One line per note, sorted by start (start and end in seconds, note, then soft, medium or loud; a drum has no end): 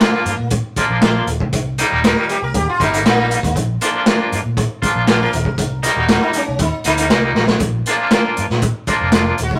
0.00 0.34 F3 medium
0.00 0.49 A#3 medium
0.00 0.34 A#3 medium
0.00 0.34 D4 medium
0.00 0.34 F4 medium
0.00 snare loud
0.00 closed hi-hat medium
0.25 0.35 G2 medium
0.25 closed hi-hat medium
0.39 0.58 A#2 medium
0.50 kick loud
0.50 closed hi-hat medium
0.76 1.02 F3 medium
0.76 1.02 A#3 medium
0.76 1.02 D4 medium
0.76 1.03 F4 medium
0.76 kick medium
0.76 closed hi-hat medium
0.89 1.19 A#1 medium
1.02 1.28 F3 medium
1.02 1.28 A#3 medium
1.02 1.28 D4 medium
1.02 1.29 F4 medium
1.02 snare loud
1.02 closed hi-hat medium
1.26 1.37 D#1 medium
1.26 closed hi-hat medium
1.40 1.79 C2 medium
1.40 kick medium
1.53 kick loud
1.53 closed hi-hat medium
1.78 2.03 D#3 medium
1.78 2.04 G3 medium
1.78 2.04 A#3 medium
1.78 2.04 D#4 loud
1.78 closed hi-hat medium
1.92 2.11 D#1 medium
2.04 2.37 D#3 medium
2.04 2.37 G3 medium
2.04 2.38 A#3 medium
2.04 2.38 D#4 medium
2.04 2.30 A#4 medium
2.04 snare loud
2.04 closed hi-hat medium
2.29 2.42 G4 medium
2.29 closed hi-hat medium
2.42 2.52 C2 medium
2.42 2.55 A#4 medium
2.54 2.64 D#2 medium
2.54 2.67 G4 medium
2.54 kick loud
2.54 closed hi-hat medium
2.69 2.80 F4 medium
2.80 3.04 G1 medium
2.80 3.04 D#3 medium
2.80 3.04 G3 medium
2.80 3.05 A#3 medium
2.80 3.05 D#4 medium
2.80 3.06 D#4 medium
2.80 kick medium
2.80 closed hi-hat medium
2.94 closed hi-hat medium
3.04 3.34 A#1 medium
3.04 3.38 D#3 medium
3.04 3.38 G3 medium
3.04 3.39 A#3 medium
3.04 3.56 A#3 loud
3.04 3.39 D#4 medium
3.04 snare loud
3.04 closed hi-hat medium
3.31 closed hi-hat medium
3.43 3.53 D#2 medium
3.43 kick medium
3.43 closed hi-hat medium
3.56 3.75 A#1 medium
3.56 kick medium
3.56 closed hi-hat medium
3.81 4.06 F3 medium
3.81 4.06 A#3 medium
3.81 4.06 D4 medium
3.81 4.06 F4 medium
3.81 closed hi-hat medium
4.06 4.40 F3 medium
4.06 4.40 A#3 medium
4.06 4.40 D4 medium
4.06 4.40 F4 medium
4.06 snare loud
4.06 closed hi-hat medium
4.32 4.42 G2 medium
4.32 closed hi-hat medium
4.45 4.64 A#2 medium
4.57 kick loud
4.57 closed hi-hat medium
4.82 5.05 F3 medium
4.82 5.06 A#3 medium
4.82 5.06 D4 medium
4.82 5.07 F4 medium
4.82 kick medium
4.82 closed hi-hat medium
4.95 5.24 A#1 medium
5.07 5.33 F3 medium
5.07 5.33 A#3 medium
5.07 5.33 D4 medium
5.07 5.34 F4 medium
5.07 5.20 F#4 medium
5.07 snare loud
5.07 closed hi-hat medium
5.23 5.96 A#4 medium
5.33 5.43 D#1 loud
5.33 closed hi-hat medium
5.45 5.84 C2 medium
5.45 kick medium
5.58 kick loud
5.58 closed hi-hat medium
5.83 6.08 D#3 medium
5.83 6.08 G3 medium
5.83 6.08 A#3 medium
5.83 6.09 D#4 loud
5.83 closed hi-hat medium
5.96 6.16 D#1 medium
5.96 6.22 F#4 medium
6.09 6.42 D#3 medium
6.09 6.42 G3 medium
6.09 6.42 A#3 medium
6.09 6.43 D#4 medium
6.09 snare loud
6.09 closed hi-hat medium
6.22 6.34 D#4 medium
6.33 6.60 C#4 medium
6.33 closed hi-hat medium
6.48 6.58 C2 medium
6.59 6.69 D#2 loud
6.59 6.85 D#4 medium
6.59 kick loud
6.59 closed hi-hat medium
6.84 7.08 D2 medium
6.84 7.10 D#3 medium
6.84 7.10 G3 medium
6.84 7.10 A#3 medium
6.84 7.11 D#4 medium
6.84 7.60 D#4 medium
6.84 closed hi-hat medium
6.97 closed hi-hat medium
7.09 7.33 C2 medium
7.09 7.44 D#3 medium
7.09 7.44 G3 medium
7.09 7.44 A#3 medium
7.09 7.44 D#4 medium
7.09 snare loud
7.09 closed hi-hat medium
7.35 7.59 A#1 medium
7.35 snare medium
7.47 snare medium
7.60 7.80 A#1 medium
7.60 kick loud
7.60 closed hi-hat medium
7.60 maracas medium
7.86 8.11 F3 medium
7.86 8.11 A#3 medium
7.86 8.11 D4 medium
7.86 8.12 F4 medium
7.86 closed hi-hat medium
7.86 maracas medium
8.11 8.45 F3 medium
8.11 8.45 A#3 medium
8.11 8.45 D4 medium
8.11 8.46 F4 medium
8.11 snare loud
8.11 closed hi-hat medium
8.11 maracas medium
8.37 8.47 G2 medium
8.37 closed hi-hat medium
8.37 maracas medium
8.50 8.69 A#2 medium
8.50 snare soft
8.62 kick loud
8.62 closed hi-hat medium
8.62 maracas medium
8.87 9.12 F3 medium
8.87 9.13 A#3 medium
8.87 9.14 D4 medium
8.87 9.13 F4 medium
8.87 kick medium
8.87 closed hi-hat medium
8.87 maracas medium
9.01 9.30 F1 medium
9.12 9.39 F3 medium
9.12 9.39 A#3 medium
9.12 9.39 D4 medium
9.12 9.39 F4 medium
9.12 snare loud
9.12 closed hi-hat medium
9.12 maracas loud
9.38 9.49 D#1 loud
9.38 closed hi-hat medium
9.38 maracas medium
9.43 9.53 F#4 medium
9.51 9.60 C2 medium
9.51 kick medium
9.55 9.60 D#4 medium